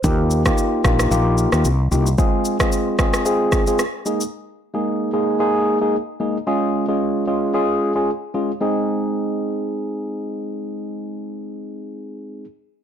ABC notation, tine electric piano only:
X:1
M:4/4
L:1/16
Q:"Swing 16ths" 1/4=112
K:Ab
V:1 name="Tine electric piano"
[B,EFG]3 [B,EFG]3 [B,EFG]2 [B,EFG]3 [B,EFG] z2 [B,EFG] z | [A,CFA]3 [A,CFA]3 [A,CFA]2 [A,CFA]3 [A,CFA] z2 [A,B,EA] z | z3 [A,B,EA]3 [A,B,EA]2 [A,B,EA]3 [A,B,EA] z2 [A,B,EA] z | [A,DFA]3 [A,DFA]3 [A,DFA]2 [A,DFA]3 [A,DFA] z2 [A,DFA] z |
[A,CEA]16- | [A,CEA]16 |]